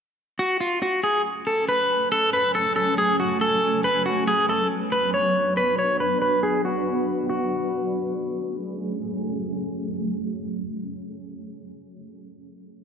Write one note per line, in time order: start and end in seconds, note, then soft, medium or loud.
0.39 7.26 F#3 medium
0.39 3.81 A3 medium
0.39 3.81 C#4 medium
0.39 0.57 F#4 medium
0.39 3.81 G#5 medium
0.60 0.78 F4 medium
0.82 1.00 F#4 medium
1.03 1.21 G#4 medium
1.47 1.64 A4 medium
1.69 2.09 B4 medium
2.12 2.29 A4 loud
2.33 2.51 B4 medium
2.55 2.72 A4 medium
2.76 2.94 A4 medium
2.98 3.16 G#4 medium
3.20 3.37 F#4 medium
3.41 3.82 A4 medium
3.84 7.26 B3 medium
3.84 7.26 D4 medium
3.84 4.02 B4 medium
3.84 7.26 B4 medium
4.06 4.23 F#4 medium
4.28 4.45 G#4 medium
4.49 4.67 A4 medium
4.92 5.10 B4 medium
5.14 5.54 C#5 medium
5.57 5.75 B4 medium
5.79 5.96 C#5 medium
6.00 6.18 B4 medium
6.22 6.39 B4 medium
6.43 6.61 G#4 medium
6.65 7.26 F#4 medium
7.30 11.34 F#3 medium
7.30 11.34 A3 medium
7.30 11.34 C#4 medium
7.30 8.55 F#4 medium
7.30 11.34 G#4 medium